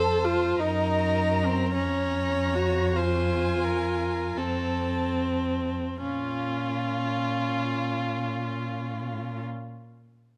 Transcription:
Already playing: F2 A4 C5 A5
0.24 F4
0.60 F#2 D#4 A#4 A#5
1.46 C4
1.74 F2 C#4 C#5 A#5
2.55 F#4
2.96 F4 C5 G#5
3.64 A#4
4.37 F2 C4 A4 A5
6.02 A#2 C#4 F4

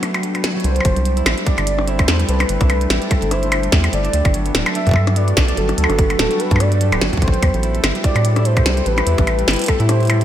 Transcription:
Already playing: F#3 A3 B3 D4 F#4 A4
0.03 A3, closed hi-hat, percussion blips
0.14 G3, closed hi-hat, percussion blips
0.23 A3, closed hi-hat
0.35 B3, closed hi-hat, percussion blips
0.44 F#3, snare, closed hi-hat
0.55 F#3
0.60 closed hi-hat
0.64 C2 C5, closed hi-hat
0.76 G3, closed hi-hat
0.80 percussion blips
0.85 G1 C4 D4, kick, closed hi-hat
0.96 C2 A4, closed hi-hat
1.05 C4, closed hi-hat
1.17 E4, closed hi-hat
1.26 A1 A3, snare, closed hi-hat, percussion blips
1.38 closed hi-hat
1.46 G3 D5, kick, closed hi-hat
1.58 G1 D4, closed hi-hat, percussion blips
1.67 closed hi-hat
1.79 C4, percussion blips
1.87 E4 C5, closed hi-hat
1.99 A3, kick, closed hi-hat, percussion blips
2.08 E2, snare, closed hi-hat
2.20 G3, closed hi-hat
2.29 C2 D4 B4, closed hi-hat
2.40 closed hi-hat, percussion blips
2.49 G1 C4, closed hi-hat
2.61 C2 E4, kick, closed hi-hat, percussion blips
2.70 A3, closed hi-hat, percussion blips
2.81 closed hi-hat
2.90 A1 G3, snare, closed hi-hat
3.02 D4, closed hi-hat
3.11 A4, kick, closed hi-hat, percussion blips
3.22 G1 C4, closed hi-hat
3.31 E4 C5, closed hi-hat, percussion blips
3.43 A3, closed hi-hat
3.52 closed hi-hat, percussion blips
3.63 G3, closed hi-hat
3.72 E2 D4, kick, snare, closed hi-hat
3.84 closed hi-hat, percussion blips
3.93 G1 A3 D5, closed hi-hat
4.05 D4, closed hi-hat
4.13 D2 G3, closed hi-hat
4.25 G1 B3, kick, closed hi-hat, percussion blips
4.34 F#3, closed hi-hat
4.46 B3, closed hi-hat
4.55 D1 F#4, snare, closed hi-hat
4.66 A3, closed hi-hat, percussion blips
4.75 D4 E5, closed hi-hat
4.87 G2 G3, kick, closed hi-hat
4.89 kick
4.91 kick
4.94 kick, percussion blips
5.07 F#3, closed hi-hat, percussion blips
5.16 B3 D5, closed hi-hat
5.28 closed hi-hat
5.37 B1 A3, kick, snare, closed hi-hat, percussion blips
5.48 D4, closed hi-hat
5.57 G1 G3 A4, closed hi-hat
5.69 closed hi-hat, percussion blips
5.78 D2 F#3, closed hi-hat
5.84 percussion blips
5.90 G1 B3, closed hi-hat, percussion blips
5.99 kick, closed hi-hat
6.10 A3, closed hi-hat, percussion blips
6.19 D1 D4, snare, closed hi-hat
6.31 G3, closed hi-hat
6.40 B4, closed hi-hat
6.51 G2 F#3, kick, closed hi-hat
6.56 percussion blips
6.60 A3 D5, closed hi-hat, percussion blips
6.72 G3, closed hi-hat
6.81 A3, closed hi-hat
6.92 D1 B3, closed hi-hat, percussion blips
7.01 G1 F#3, snare
7.13 D2 F#3, kick, closed hi-hat
7.17 kick
7.22 A1 G3 C5, kick, closed hi-hat
7.28 kick
7.33 C4, closed hi-hat
7.42 E2, kick, closed hi-hat, percussion blips
7.48 E4
7.54 A1 B3, closed hi-hat
7.60 E4 G4, closed hi-hat
7.74 A3, closed hi-hat
7.84 G1, snare, closed hi-hat, percussion blips
7.95 G3, closed hi-hat
8.04 C4 D5, kick, closed hi-hat
8.16 A2, closed hi-hat, percussion blips
8.25 B3, closed hi-hat
8.36 E4 D5, closed hi-hat, percussion blips
8.45 A3 C5, closed hi-hat
8.57 kick, closed hi-hat, percussion blips
8.66 C2 G3, snare, closed hi-hat
8.77 C4, closed hi-hat
8.86 A1 B4, closed hi-hat
8.98 B3, closed hi-hat, percussion blips
9.07 E2 E4, closed hi-hat
9.18 A1 A3, kick, closed hi-hat, percussion blips
9.27 closed hi-hat, percussion blips
9.39 G3, closed hi-hat
9.48 G1 C4, snare, closed hi-hat
9.51 closed hi-hat
9.53 closed hi-hat
9.56 closed hi-hat
9.59 closed hi-hat
9.62 closed hi-hat
9.64 closed hi-hat
9.66 closed hi-hat
9.68 B3 A4, kick, closed hi-hat, percussion blips
9.80 A2 E4, closed hi-hat
9.89 A3 C5, closed hi-hat, percussion blips
10.00 closed hi-hat
10.03 closed hi-hat
10.05 closed hi-hat
10.07 G3, closed hi-hat
10.10 closed hi-hat, percussion blips
10.21 C4, closed hi-hat

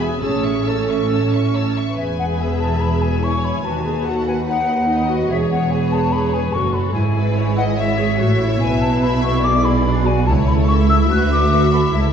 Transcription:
Already playing: E1 E2 B3
0.01 G#4 E5 G#5 B5
0.23 A1 A2 C#4 G#4 C#5 A5 E6
0.45 E5 C#6
0.67 A4 C#5 A5 E6
0.89 E5 C#6
1.11 C#5 A5 E6
1.32 E5 C#6
1.54 C#5 A5 E6
1.76 E5 C#6
1.97 E1 E2 G#4 B4 E5 G#5
2.18 F#5
2.39 E5 G#5
2.60 A5
2.80 B5
3.01 G#5
3.22 E4 C#5 G#5 C#6
3.44 B5
3.64 D#2 F#4 B4 A5
3.85 G#4
4.06 F#4 A4 F#5
4.27 B4 G#5
4.47 D#4 F#5
4.89 D#4 B4 D#5
5.11 F#4
5.30 E1 E2 G#4 C#5 E5
5.51 F#5
5.71 G#4 B4 G#5
5.92 A5
6.12 G#4 B4 B5
6.33 G#5
6.52 F#1 F#2 F#4 A4 C#6
6.73 B5
6.93 G#1 G#2 E4 G#4 B4 G#5
7.16 B4
7.37 B4 C#5
7.57 D#5 F#5
7.78 E4 C#5 E5
7.99 G#4
8.19 A1 A2 F#4 E5
8.41 E4
8.60 B1 B2 E4 B4 G#5
8.81 A5
9.02 E5 B5
9.23 C#6
9.44 G#4 D5 D6
9.64 B5
9.85 D4
10.06 F#4 G#5
10.26 C#2 E4 A4 C#5 A5
10.47 B5
10.68 E4 E5 C#6
10.89 E6
11.10 D2 F#4 B4 F#6
11.31 D6
11.52 F#4 B4
11.73 A4 B5
11.93 C#2 E4 A4 E5

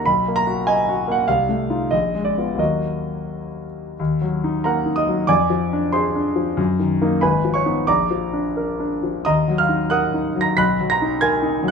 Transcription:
0.06 B1 B5
0.28 A#3
0.36 A#5
0.47 F#4
0.67 D#5 G#5
0.89 F#4
1.08 A#3 F#5
1.28 C2 F5
1.49 A3
1.70 D#4 F4
1.91 A#1 D#5
2.15 G#3
2.25 D5
2.37 B3 F4
2.55 D#2 F#3 A#3
2.59 F#4 D#5
3.99 D#2
4.21 F#3
4.44 D#4
4.64 A#3 A#4 F#5 A#5
4.86 D#4
4.96 D#5 D#6
5.07 F#3
5.27 F2 D5 G#5 D6
5.50 F3
5.73 D4
5.92 G#4 C5 C6
6.15 D4
6.36 F3
6.57 F#2
6.79 D#3
7.02 A#3 D#4
7.21 G#1 B4 G#5 B5
7.45 F3
7.54 C#5 C#6
7.66 B3 D#4
7.87 A#1 D5 A#5 D6
8.11 F3
8.33 D4
8.57 A#4
8.79 D4
9.03 F3
9.25 D#2 D#5 A#5 D#6
9.48 F#3
9.58 F5 F6
9.69 D#4
9.90 A#4 F#5 D#6 F#6
10.14 D#4
10.36 F#3
10.41 A#5 A#6
10.57 B1 B5 F#6 B6
10.80 F#3
10.90 A#5 A#6
11.02 D#4
11.21 A#4 G#5 G#6
11.43 D#4
11.63 F#3

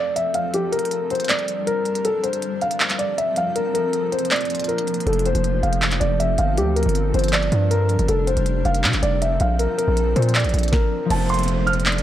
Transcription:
Already playing: F3 C4 A4 D5
0.16 E5, closed hi-hat
0.34 F5, closed hi-hat
0.54 G3 D4 G4 A#4, closed hi-hat
0.72 A#4, closed hi-hat
0.79 closed hi-hat
0.85 closed hi-hat
0.91 closed hi-hat
1.10 C5, closed hi-hat
1.15 closed hi-hat
1.20 closed hi-hat
1.25 closed hi-hat
1.29 D5, clap, closed hi-hat
1.39 closed hi-hat
1.48 closed hi-hat
1.67 A#4, closed hi-hat
1.85 closed hi-hat, open hi-hat
1.95 closed hi-hat
2.05 F3 C4 A4, closed hi-hat
2.23 C5, closed hi-hat
2.33 closed hi-hat
2.42 closed hi-hat
2.61 F5, closed hi-hat
2.71 closed hi-hat
2.80 clap, closed hi-hat
2.90 clap, closed hi-hat
2.99 D5, closed hi-hat
3.18 E5, closed hi-hat
3.36 F5, closed hi-hat
3.55 F3 A#3 D4 A#4, closed hi-hat
3.74 A#4, closed hi-hat
3.93 closed hi-hat
4.12 C5, closed hi-hat
4.19 closed hi-hat
4.25 closed hi-hat
4.31 D5, clap, closed hi-hat
4.36 closed hi-hat
4.41 closed hi-hat
4.45 closed hi-hat
4.50 closed hi-hat
4.55 closed hi-hat
4.60 closed hi-hat
4.64 A#4, closed hi-hat
4.69 closed hi-hat
4.78 closed hi-hat
4.87 closed hi-hat, open hi-hat
4.94 closed hi-hat
5.00 closed hi-hat
5.07 F1 C4 A4, closed hi-hat
5.13 closed hi-hat
5.19 closed hi-hat
5.25 C5, closed hi-hat
5.35 F1, closed hi-hat
5.44 closed hi-hat
5.63 F1 F5, closed hi-hat
5.73 closed hi-hat
5.82 clap, closed hi-hat
5.92 clap, closed hi-hat
6.00 F1 D5, closed hi-hat
6.20 E5, closed hi-hat
6.38 G1 F5, closed hi-hat
6.57 D2 G3 D4 G4 A#4, closed hi-hat
6.76 A#4, closed hi-hat
6.83 G1, closed hi-hat
6.89 closed hi-hat
6.95 closed hi-hat
7.14 G1 C5, closed hi-hat
7.19 closed hi-hat
7.24 closed hi-hat
7.28 closed hi-hat
7.33 D5, clap, closed hi-hat
7.42 closed hi-hat
7.52 G2, closed hi-hat
7.71 A#4, closed hi-hat
7.89 closed hi-hat, open hi-hat
7.99 G1, closed hi-hat
8.08 F1 F3 C4 A4, closed hi-hat
8.27 C5, closed hi-hat
8.37 F1, closed hi-hat
8.46 closed hi-hat
8.65 F1 F5, closed hi-hat
8.74 closed hi-hat
8.84 C3, clap, closed hi-hat
8.93 F1, clap, closed hi-hat
9.03 F1 D5, closed hi-hat
9.22 E5, closed hi-hat
9.40 A#1 F5, closed hi-hat
9.59 A#4, closed hi-hat
9.78 A#4, closed hi-hat
9.88 A#1
9.97 closed hi-hat
10.16 A#2 C5, closed hi-hat
10.22 closed hi-hat
10.29 closed hi-hat
10.35 D5, clap, closed hi-hat
10.40 closed hi-hat
10.44 A1, closed hi-hat
10.49 closed hi-hat
10.54 A#1, closed hi-hat
10.59 closed hi-hat
10.63 closed hi-hat
10.68 A#4, closed hi-hat
10.73 kick, snare
11.05 F3 A3
11.10 F1 C4 F4 C5 A5, closed hi-hat, crash, downlifter
11.15 A4
11.29 C6, closed hi-hat
11.34 closed hi-hat
11.39 closed hi-hat
11.43 closed hi-hat
11.48 closed hi-hat
11.67 F6, closed hi-hat
11.73 closed hi-hat
11.80 closed hi-hat
11.86 D5, clap, closed hi-hat
11.92 closed hi-hat
11.98 closed hi-hat

